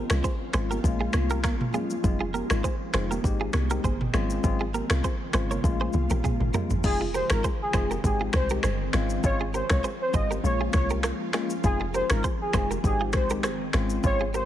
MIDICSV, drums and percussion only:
0, 0, Header, 1, 2, 480
1, 0, Start_track
1, 0, Key_signature, -4, "minor"
1, 0, Tempo, 600000
1, 1631, Time_signature, 4, 2, 24, 8
1, 11562, End_track
2, 0, Start_track
2, 0, Title_t, "Drums"
2, 78, Note_on_c, 9, 26, 97
2, 83, Note_on_c, 9, 37, 114
2, 84, Note_on_c, 9, 82, 72
2, 158, Note_off_c, 9, 26, 0
2, 163, Note_off_c, 9, 37, 0
2, 164, Note_off_c, 9, 82, 0
2, 192, Note_on_c, 9, 36, 83
2, 194, Note_on_c, 9, 82, 75
2, 272, Note_off_c, 9, 36, 0
2, 274, Note_off_c, 9, 82, 0
2, 428, Note_on_c, 9, 26, 79
2, 430, Note_on_c, 9, 82, 59
2, 432, Note_on_c, 9, 37, 94
2, 508, Note_off_c, 9, 26, 0
2, 510, Note_off_c, 9, 82, 0
2, 512, Note_off_c, 9, 37, 0
2, 571, Note_on_c, 9, 63, 74
2, 571, Note_on_c, 9, 82, 67
2, 651, Note_off_c, 9, 63, 0
2, 651, Note_off_c, 9, 82, 0
2, 672, Note_on_c, 9, 36, 114
2, 679, Note_on_c, 9, 82, 85
2, 752, Note_off_c, 9, 36, 0
2, 759, Note_off_c, 9, 82, 0
2, 905, Note_on_c, 9, 26, 76
2, 905, Note_on_c, 9, 82, 50
2, 908, Note_on_c, 9, 63, 73
2, 910, Note_on_c, 9, 37, 96
2, 985, Note_off_c, 9, 26, 0
2, 985, Note_off_c, 9, 82, 0
2, 988, Note_off_c, 9, 63, 0
2, 990, Note_off_c, 9, 37, 0
2, 1040, Note_on_c, 9, 82, 72
2, 1120, Note_off_c, 9, 82, 0
2, 1148, Note_on_c, 9, 26, 75
2, 1152, Note_on_c, 9, 36, 91
2, 1153, Note_on_c, 9, 37, 96
2, 1157, Note_on_c, 9, 82, 69
2, 1161, Note_on_c, 9, 63, 78
2, 1228, Note_off_c, 9, 26, 0
2, 1232, Note_off_c, 9, 36, 0
2, 1233, Note_off_c, 9, 37, 0
2, 1237, Note_off_c, 9, 82, 0
2, 1241, Note_off_c, 9, 63, 0
2, 1286, Note_on_c, 9, 45, 85
2, 1366, Note_off_c, 9, 45, 0
2, 1392, Note_on_c, 9, 82, 56
2, 1394, Note_on_c, 9, 63, 53
2, 1394, Note_on_c, 9, 64, 74
2, 1472, Note_off_c, 9, 82, 0
2, 1474, Note_off_c, 9, 63, 0
2, 1474, Note_off_c, 9, 64, 0
2, 1522, Note_on_c, 9, 82, 68
2, 1602, Note_off_c, 9, 82, 0
2, 1632, Note_on_c, 9, 36, 119
2, 1632, Note_on_c, 9, 82, 67
2, 1635, Note_on_c, 9, 64, 74
2, 1712, Note_off_c, 9, 36, 0
2, 1712, Note_off_c, 9, 82, 0
2, 1715, Note_off_c, 9, 64, 0
2, 1871, Note_on_c, 9, 63, 81
2, 1878, Note_on_c, 9, 82, 54
2, 1951, Note_off_c, 9, 63, 0
2, 1958, Note_off_c, 9, 82, 0
2, 2000, Note_on_c, 9, 26, 93
2, 2004, Note_on_c, 9, 37, 117
2, 2005, Note_on_c, 9, 82, 71
2, 2080, Note_off_c, 9, 26, 0
2, 2084, Note_off_c, 9, 37, 0
2, 2085, Note_off_c, 9, 82, 0
2, 2113, Note_on_c, 9, 36, 80
2, 2115, Note_on_c, 9, 82, 70
2, 2193, Note_off_c, 9, 36, 0
2, 2195, Note_off_c, 9, 82, 0
2, 2349, Note_on_c, 9, 26, 76
2, 2351, Note_on_c, 9, 82, 57
2, 2353, Note_on_c, 9, 37, 96
2, 2429, Note_off_c, 9, 26, 0
2, 2431, Note_off_c, 9, 82, 0
2, 2433, Note_off_c, 9, 37, 0
2, 2490, Note_on_c, 9, 63, 74
2, 2492, Note_on_c, 9, 82, 67
2, 2570, Note_off_c, 9, 63, 0
2, 2572, Note_off_c, 9, 82, 0
2, 2592, Note_on_c, 9, 36, 118
2, 2601, Note_on_c, 9, 82, 87
2, 2672, Note_off_c, 9, 36, 0
2, 2681, Note_off_c, 9, 82, 0
2, 2825, Note_on_c, 9, 82, 48
2, 2826, Note_on_c, 9, 26, 75
2, 2828, Note_on_c, 9, 63, 75
2, 2830, Note_on_c, 9, 37, 93
2, 2905, Note_off_c, 9, 82, 0
2, 2906, Note_off_c, 9, 26, 0
2, 2908, Note_off_c, 9, 63, 0
2, 2910, Note_off_c, 9, 37, 0
2, 2961, Note_on_c, 9, 82, 70
2, 3041, Note_off_c, 9, 82, 0
2, 3072, Note_on_c, 9, 36, 92
2, 3076, Note_on_c, 9, 82, 67
2, 3080, Note_on_c, 9, 63, 79
2, 3152, Note_off_c, 9, 36, 0
2, 3156, Note_off_c, 9, 82, 0
2, 3160, Note_off_c, 9, 63, 0
2, 3206, Note_on_c, 9, 45, 88
2, 3286, Note_off_c, 9, 45, 0
2, 3309, Note_on_c, 9, 26, 73
2, 3312, Note_on_c, 9, 82, 56
2, 3313, Note_on_c, 9, 37, 86
2, 3313, Note_on_c, 9, 63, 53
2, 3313, Note_on_c, 9, 64, 74
2, 3389, Note_off_c, 9, 26, 0
2, 3392, Note_off_c, 9, 82, 0
2, 3393, Note_off_c, 9, 37, 0
2, 3393, Note_off_c, 9, 63, 0
2, 3393, Note_off_c, 9, 64, 0
2, 3441, Note_on_c, 9, 82, 69
2, 3521, Note_off_c, 9, 82, 0
2, 3551, Note_on_c, 9, 36, 114
2, 3551, Note_on_c, 9, 82, 68
2, 3553, Note_on_c, 9, 64, 72
2, 3631, Note_off_c, 9, 36, 0
2, 3631, Note_off_c, 9, 82, 0
2, 3633, Note_off_c, 9, 64, 0
2, 3791, Note_on_c, 9, 63, 82
2, 3796, Note_on_c, 9, 82, 56
2, 3871, Note_off_c, 9, 63, 0
2, 3876, Note_off_c, 9, 82, 0
2, 3918, Note_on_c, 9, 26, 95
2, 3923, Note_on_c, 9, 37, 114
2, 3924, Note_on_c, 9, 82, 68
2, 3998, Note_off_c, 9, 26, 0
2, 4003, Note_off_c, 9, 37, 0
2, 4004, Note_off_c, 9, 82, 0
2, 4032, Note_on_c, 9, 36, 82
2, 4034, Note_on_c, 9, 82, 70
2, 4112, Note_off_c, 9, 36, 0
2, 4114, Note_off_c, 9, 82, 0
2, 4267, Note_on_c, 9, 26, 82
2, 4269, Note_on_c, 9, 82, 61
2, 4271, Note_on_c, 9, 37, 102
2, 4347, Note_off_c, 9, 26, 0
2, 4349, Note_off_c, 9, 82, 0
2, 4351, Note_off_c, 9, 37, 0
2, 4410, Note_on_c, 9, 63, 72
2, 4410, Note_on_c, 9, 82, 69
2, 4490, Note_off_c, 9, 63, 0
2, 4490, Note_off_c, 9, 82, 0
2, 4510, Note_on_c, 9, 48, 56
2, 4511, Note_on_c, 9, 36, 127
2, 4518, Note_on_c, 9, 82, 87
2, 4590, Note_off_c, 9, 48, 0
2, 4591, Note_off_c, 9, 36, 0
2, 4598, Note_off_c, 9, 82, 0
2, 4642, Note_on_c, 9, 48, 55
2, 4722, Note_off_c, 9, 48, 0
2, 4744, Note_on_c, 9, 82, 47
2, 4748, Note_on_c, 9, 63, 73
2, 4750, Note_on_c, 9, 47, 74
2, 4824, Note_off_c, 9, 82, 0
2, 4828, Note_off_c, 9, 63, 0
2, 4830, Note_off_c, 9, 47, 0
2, 4879, Note_on_c, 9, 82, 72
2, 4883, Note_on_c, 9, 47, 68
2, 4959, Note_off_c, 9, 82, 0
2, 4963, Note_off_c, 9, 47, 0
2, 4992, Note_on_c, 9, 36, 91
2, 4992, Note_on_c, 9, 45, 86
2, 4996, Note_on_c, 9, 82, 67
2, 5001, Note_on_c, 9, 63, 83
2, 5072, Note_off_c, 9, 36, 0
2, 5072, Note_off_c, 9, 45, 0
2, 5076, Note_off_c, 9, 82, 0
2, 5081, Note_off_c, 9, 63, 0
2, 5124, Note_on_c, 9, 45, 74
2, 5204, Note_off_c, 9, 45, 0
2, 5230, Note_on_c, 9, 82, 52
2, 5232, Note_on_c, 9, 43, 109
2, 5233, Note_on_c, 9, 63, 52
2, 5233, Note_on_c, 9, 64, 75
2, 5310, Note_off_c, 9, 82, 0
2, 5312, Note_off_c, 9, 43, 0
2, 5313, Note_off_c, 9, 63, 0
2, 5313, Note_off_c, 9, 64, 0
2, 5361, Note_on_c, 9, 82, 70
2, 5364, Note_on_c, 9, 43, 90
2, 5441, Note_off_c, 9, 82, 0
2, 5444, Note_off_c, 9, 43, 0
2, 5471, Note_on_c, 9, 49, 98
2, 5471, Note_on_c, 9, 82, 69
2, 5472, Note_on_c, 9, 36, 116
2, 5551, Note_off_c, 9, 49, 0
2, 5551, Note_off_c, 9, 82, 0
2, 5552, Note_off_c, 9, 36, 0
2, 5715, Note_on_c, 9, 82, 57
2, 5795, Note_off_c, 9, 82, 0
2, 5837, Note_on_c, 9, 26, 94
2, 5842, Note_on_c, 9, 37, 122
2, 5843, Note_on_c, 9, 82, 71
2, 5917, Note_off_c, 9, 26, 0
2, 5922, Note_off_c, 9, 37, 0
2, 5923, Note_off_c, 9, 82, 0
2, 5952, Note_on_c, 9, 36, 84
2, 5954, Note_on_c, 9, 82, 71
2, 6032, Note_off_c, 9, 36, 0
2, 6034, Note_off_c, 9, 82, 0
2, 6187, Note_on_c, 9, 26, 80
2, 6190, Note_on_c, 9, 36, 93
2, 6190, Note_on_c, 9, 82, 60
2, 6192, Note_on_c, 9, 37, 96
2, 6267, Note_off_c, 9, 26, 0
2, 6270, Note_off_c, 9, 36, 0
2, 6270, Note_off_c, 9, 82, 0
2, 6272, Note_off_c, 9, 37, 0
2, 6329, Note_on_c, 9, 82, 71
2, 6409, Note_off_c, 9, 82, 0
2, 6432, Note_on_c, 9, 36, 101
2, 6438, Note_on_c, 9, 82, 89
2, 6512, Note_off_c, 9, 36, 0
2, 6518, Note_off_c, 9, 82, 0
2, 6663, Note_on_c, 9, 82, 50
2, 6664, Note_on_c, 9, 26, 79
2, 6668, Note_on_c, 9, 37, 98
2, 6671, Note_on_c, 9, 36, 98
2, 6743, Note_off_c, 9, 82, 0
2, 6744, Note_off_c, 9, 26, 0
2, 6748, Note_off_c, 9, 37, 0
2, 6751, Note_off_c, 9, 36, 0
2, 6797, Note_on_c, 9, 82, 72
2, 6877, Note_off_c, 9, 82, 0
2, 6904, Note_on_c, 9, 26, 80
2, 6908, Note_on_c, 9, 37, 100
2, 6912, Note_on_c, 9, 82, 70
2, 6984, Note_off_c, 9, 26, 0
2, 6988, Note_off_c, 9, 37, 0
2, 6992, Note_off_c, 9, 82, 0
2, 7145, Note_on_c, 9, 26, 72
2, 7148, Note_on_c, 9, 82, 55
2, 7150, Note_on_c, 9, 37, 91
2, 7225, Note_off_c, 9, 26, 0
2, 7228, Note_off_c, 9, 82, 0
2, 7230, Note_off_c, 9, 37, 0
2, 7279, Note_on_c, 9, 82, 69
2, 7359, Note_off_c, 9, 82, 0
2, 7389, Note_on_c, 9, 82, 71
2, 7390, Note_on_c, 9, 36, 117
2, 7469, Note_off_c, 9, 82, 0
2, 7470, Note_off_c, 9, 36, 0
2, 7635, Note_on_c, 9, 82, 54
2, 7715, Note_off_c, 9, 82, 0
2, 7756, Note_on_c, 9, 26, 94
2, 7761, Note_on_c, 9, 37, 121
2, 7762, Note_on_c, 9, 36, 90
2, 7762, Note_on_c, 9, 82, 70
2, 7836, Note_off_c, 9, 26, 0
2, 7841, Note_off_c, 9, 37, 0
2, 7842, Note_off_c, 9, 36, 0
2, 7842, Note_off_c, 9, 82, 0
2, 7873, Note_on_c, 9, 82, 73
2, 7953, Note_off_c, 9, 82, 0
2, 8109, Note_on_c, 9, 82, 60
2, 8110, Note_on_c, 9, 36, 89
2, 8189, Note_off_c, 9, 82, 0
2, 8190, Note_off_c, 9, 36, 0
2, 8251, Note_on_c, 9, 82, 66
2, 8331, Note_off_c, 9, 82, 0
2, 8359, Note_on_c, 9, 82, 90
2, 8439, Note_off_c, 9, 82, 0
2, 8585, Note_on_c, 9, 26, 78
2, 8585, Note_on_c, 9, 82, 51
2, 8590, Note_on_c, 9, 37, 94
2, 8591, Note_on_c, 9, 36, 100
2, 8665, Note_off_c, 9, 26, 0
2, 8665, Note_off_c, 9, 82, 0
2, 8670, Note_off_c, 9, 37, 0
2, 8671, Note_off_c, 9, 36, 0
2, 8718, Note_on_c, 9, 82, 70
2, 8798, Note_off_c, 9, 82, 0
2, 8826, Note_on_c, 9, 26, 80
2, 8830, Note_on_c, 9, 37, 96
2, 8834, Note_on_c, 9, 82, 72
2, 8906, Note_off_c, 9, 26, 0
2, 8910, Note_off_c, 9, 37, 0
2, 8914, Note_off_c, 9, 82, 0
2, 9066, Note_on_c, 9, 26, 72
2, 9069, Note_on_c, 9, 82, 54
2, 9071, Note_on_c, 9, 37, 93
2, 9146, Note_off_c, 9, 26, 0
2, 9149, Note_off_c, 9, 82, 0
2, 9151, Note_off_c, 9, 37, 0
2, 9200, Note_on_c, 9, 82, 75
2, 9280, Note_off_c, 9, 82, 0
2, 9311, Note_on_c, 9, 82, 73
2, 9312, Note_on_c, 9, 36, 119
2, 9391, Note_off_c, 9, 82, 0
2, 9392, Note_off_c, 9, 36, 0
2, 9555, Note_on_c, 9, 82, 56
2, 9635, Note_off_c, 9, 82, 0
2, 9677, Note_on_c, 9, 26, 93
2, 9682, Note_on_c, 9, 37, 119
2, 9683, Note_on_c, 9, 82, 70
2, 9757, Note_off_c, 9, 26, 0
2, 9762, Note_off_c, 9, 37, 0
2, 9763, Note_off_c, 9, 82, 0
2, 9792, Note_on_c, 9, 36, 83
2, 9793, Note_on_c, 9, 82, 75
2, 9872, Note_off_c, 9, 36, 0
2, 9873, Note_off_c, 9, 82, 0
2, 10027, Note_on_c, 9, 26, 79
2, 10030, Note_on_c, 9, 36, 88
2, 10030, Note_on_c, 9, 82, 62
2, 10032, Note_on_c, 9, 37, 96
2, 10107, Note_off_c, 9, 26, 0
2, 10110, Note_off_c, 9, 36, 0
2, 10110, Note_off_c, 9, 82, 0
2, 10112, Note_off_c, 9, 37, 0
2, 10170, Note_on_c, 9, 82, 71
2, 10250, Note_off_c, 9, 82, 0
2, 10271, Note_on_c, 9, 36, 101
2, 10278, Note_on_c, 9, 82, 86
2, 10351, Note_off_c, 9, 36, 0
2, 10358, Note_off_c, 9, 82, 0
2, 10503, Note_on_c, 9, 82, 51
2, 10504, Note_on_c, 9, 26, 74
2, 10508, Note_on_c, 9, 37, 96
2, 10511, Note_on_c, 9, 36, 103
2, 10583, Note_off_c, 9, 82, 0
2, 10584, Note_off_c, 9, 26, 0
2, 10588, Note_off_c, 9, 37, 0
2, 10591, Note_off_c, 9, 36, 0
2, 10638, Note_on_c, 9, 82, 74
2, 10718, Note_off_c, 9, 82, 0
2, 10747, Note_on_c, 9, 26, 76
2, 10751, Note_on_c, 9, 37, 96
2, 10755, Note_on_c, 9, 82, 70
2, 10827, Note_off_c, 9, 26, 0
2, 10831, Note_off_c, 9, 37, 0
2, 10835, Note_off_c, 9, 82, 0
2, 10986, Note_on_c, 9, 26, 72
2, 10989, Note_on_c, 9, 82, 56
2, 10991, Note_on_c, 9, 37, 90
2, 11066, Note_off_c, 9, 26, 0
2, 11069, Note_off_c, 9, 82, 0
2, 11071, Note_off_c, 9, 37, 0
2, 11118, Note_on_c, 9, 82, 69
2, 11198, Note_off_c, 9, 82, 0
2, 11228, Note_on_c, 9, 82, 70
2, 11230, Note_on_c, 9, 36, 118
2, 11308, Note_off_c, 9, 82, 0
2, 11310, Note_off_c, 9, 36, 0
2, 11474, Note_on_c, 9, 82, 54
2, 11554, Note_off_c, 9, 82, 0
2, 11562, End_track
0, 0, End_of_file